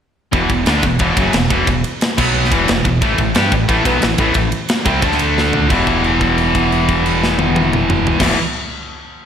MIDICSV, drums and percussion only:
0, 0, Header, 1, 2, 480
1, 0, Start_track
1, 0, Key_signature, 1, "minor"
1, 0, Tempo, 335758
1, 482, Time_signature, 4, 2, 24, 8
1, 13231, End_track
2, 0, Start_track
2, 0, Title_t, "Drums"
2, 470, Note_on_c, 9, 51, 93
2, 473, Note_on_c, 9, 36, 98
2, 613, Note_off_c, 9, 51, 0
2, 616, Note_off_c, 9, 36, 0
2, 707, Note_on_c, 9, 51, 71
2, 710, Note_on_c, 9, 36, 87
2, 850, Note_off_c, 9, 51, 0
2, 853, Note_off_c, 9, 36, 0
2, 943, Note_on_c, 9, 51, 99
2, 960, Note_on_c, 9, 38, 119
2, 1086, Note_off_c, 9, 51, 0
2, 1103, Note_off_c, 9, 38, 0
2, 1184, Note_on_c, 9, 51, 83
2, 1189, Note_on_c, 9, 36, 85
2, 1327, Note_off_c, 9, 51, 0
2, 1332, Note_off_c, 9, 36, 0
2, 1416, Note_on_c, 9, 51, 104
2, 1428, Note_on_c, 9, 36, 110
2, 1559, Note_off_c, 9, 51, 0
2, 1571, Note_off_c, 9, 36, 0
2, 1670, Note_on_c, 9, 36, 121
2, 1673, Note_on_c, 9, 51, 83
2, 1813, Note_off_c, 9, 36, 0
2, 1816, Note_off_c, 9, 51, 0
2, 1902, Note_on_c, 9, 51, 104
2, 1920, Note_on_c, 9, 38, 106
2, 2045, Note_off_c, 9, 51, 0
2, 2062, Note_off_c, 9, 38, 0
2, 2151, Note_on_c, 9, 36, 107
2, 2151, Note_on_c, 9, 51, 69
2, 2294, Note_off_c, 9, 36, 0
2, 2294, Note_off_c, 9, 51, 0
2, 2391, Note_on_c, 9, 51, 100
2, 2392, Note_on_c, 9, 36, 99
2, 2534, Note_off_c, 9, 51, 0
2, 2535, Note_off_c, 9, 36, 0
2, 2632, Note_on_c, 9, 51, 73
2, 2775, Note_off_c, 9, 51, 0
2, 2875, Note_on_c, 9, 51, 91
2, 2892, Note_on_c, 9, 38, 108
2, 3018, Note_off_c, 9, 51, 0
2, 3035, Note_off_c, 9, 38, 0
2, 3118, Note_on_c, 9, 36, 119
2, 3118, Note_on_c, 9, 49, 102
2, 3261, Note_off_c, 9, 36, 0
2, 3261, Note_off_c, 9, 49, 0
2, 3495, Note_on_c, 9, 38, 35
2, 3598, Note_on_c, 9, 36, 112
2, 3599, Note_on_c, 9, 51, 78
2, 3638, Note_off_c, 9, 38, 0
2, 3741, Note_off_c, 9, 36, 0
2, 3742, Note_off_c, 9, 51, 0
2, 3831, Note_on_c, 9, 51, 98
2, 3848, Note_on_c, 9, 38, 107
2, 3974, Note_off_c, 9, 51, 0
2, 3991, Note_off_c, 9, 38, 0
2, 4075, Note_on_c, 9, 51, 62
2, 4076, Note_on_c, 9, 36, 78
2, 4218, Note_off_c, 9, 51, 0
2, 4219, Note_off_c, 9, 36, 0
2, 4314, Note_on_c, 9, 51, 104
2, 4316, Note_on_c, 9, 36, 106
2, 4457, Note_off_c, 9, 51, 0
2, 4459, Note_off_c, 9, 36, 0
2, 4548, Note_on_c, 9, 51, 63
2, 4554, Note_on_c, 9, 36, 85
2, 4691, Note_off_c, 9, 51, 0
2, 4697, Note_off_c, 9, 36, 0
2, 4784, Note_on_c, 9, 51, 101
2, 4801, Note_on_c, 9, 38, 113
2, 4927, Note_off_c, 9, 51, 0
2, 4944, Note_off_c, 9, 38, 0
2, 5028, Note_on_c, 9, 51, 77
2, 5032, Note_on_c, 9, 36, 95
2, 5171, Note_off_c, 9, 51, 0
2, 5175, Note_off_c, 9, 36, 0
2, 5272, Note_on_c, 9, 36, 104
2, 5276, Note_on_c, 9, 51, 96
2, 5415, Note_off_c, 9, 36, 0
2, 5418, Note_off_c, 9, 51, 0
2, 5510, Note_on_c, 9, 36, 108
2, 5514, Note_on_c, 9, 51, 86
2, 5653, Note_off_c, 9, 36, 0
2, 5657, Note_off_c, 9, 51, 0
2, 5744, Note_on_c, 9, 51, 105
2, 5761, Note_on_c, 9, 38, 107
2, 5887, Note_off_c, 9, 51, 0
2, 5904, Note_off_c, 9, 38, 0
2, 5977, Note_on_c, 9, 51, 72
2, 5984, Note_on_c, 9, 36, 104
2, 6120, Note_off_c, 9, 51, 0
2, 6127, Note_off_c, 9, 36, 0
2, 6207, Note_on_c, 9, 51, 100
2, 6220, Note_on_c, 9, 36, 96
2, 6350, Note_off_c, 9, 51, 0
2, 6363, Note_off_c, 9, 36, 0
2, 6460, Note_on_c, 9, 51, 73
2, 6603, Note_off_c, 9, 51, 0
2, 6699, Note_on_c, 9, 51, 103
2, 6716, Note_on_c, 9, 38, 112
2, 6842, Note_off_c, 9, 51, 0
2, 6859, Note_off_c, 9, 38, 0
2, 6940, Note_on_c, 9, 51, 82
2, 6943, Note_on_c, 9, 36, 105
2, 7083, Note_off_c, 9, 51, 0
2, 7086, Note_off_c, 9, 36, 0
2, 7177, Note_on_c, 9, 51, 92
2, 7183, Note_on_c, 9, 36, 111
2, 7314, Note_on_c, 9, 38, 33
2, 7320, Note_off_c, 9, 51, 0
2, 7326, Note_off_c, 9, 36, 0
2, 7423, Note_on_c, 9, 51, 82
2, 7457, Note_off_c, 9, 38, 0
2, 7566, Note_off_c, 9, 51, 0
2, 7691, Note_on_c, 9, 38, 57
2, 7834, Note_off_c, 9, 38, 0
2, 7907, Note_on_c, 9, 43, 93
2, 8050, Note_off_c, 9, 43, 0
2, 8153, Note_on_c, 9, 36, 101
2, 8153, Note_on_c, 9, 57, 83
2, 8296, Note_off_c, 9, 36, 0
2, 8296, Note_off_c, 9, 57, 0
2, 8386, Note_on_c, 9, 57, 44
2, 8392, Note_on_c, 9, 36, 64
2, 8529, Note_off_c, 9, 57, 0
2, 8535, Note_off_c, 9, 36, 0
2, 8637, Note_on_c, 9, 49, 44
2, 8780, Note_off_c, 9, 49, 0
2, 8876, Note_on_c, 9, 57, 48
2, 8877, Note_on_c, 9, 36, 66
2, 9018, Note_off_c, 9, 57, 0
2, 9020, Note_off_c, 9, 36, 0
2, 9117, Note_on_c, 9, 49, 47
2, 9260, Note_off_c, 9, 49, 0
2, 9363, Note_on_c, 9, 36, 71
2, 9369, Note_on_c, 9, 57, 56
2, 9506, Note_off_c, 9, 36, 0
2, 9512, Note_off_c, 9, 57, 0
2, 9609, Note_on_c, 9, 49, 49
2, 9752, Note_off_c, 9, 49, 0
2, 9844, Note_on_c, 9, 57, 49
2, 9846, Note_on_c, 9, 36, 62
2, 9987, Note_off_c, 9, 57, 0
2, 9989, Note_off_c, 9, 36, 0
2, 10088, Note_on_c, 9, 49, 55
2, 10231, Note_off_c, 9, 49, 0
2, 10343, Note_on_c, 9, 38, 75
2, 10486, Note_off_c, 9, 38, 0
2, 10561, Note_on_c, 9, 48, 100
2, 10704, Note_off_c, 9, 48, 0
2, 10810, Note_on_c, 9, 48, 107
2, 10953, Note_off_c, 9, 48, 0
2, 11056, Note_on_c, 9, 47, 103
2, 11199, Note_off_c, 9, 47, 0
2, 11292, Note_on_c, 9, 45, 106
2, 11435, Note_off_c, 9, 45, 0
2, 11534, Note_on_c, 9, 43, 99
2, 11677, Note_off_c, 9, 43, 0
2, 11724, Note_on_c, 9, 36, 108
2, 11727, Note_on_c, 9, 57, 106
2, 11744, Note_on_c, 9, 38, 100
2, 11867, Note_off_c, 9, 36, 0
2, 11870, Note_off_c, 9, 57, 0
2, 11887, Note_off_c, 9, 38, 0
2, 13231, End_track
0, 0, End_of_file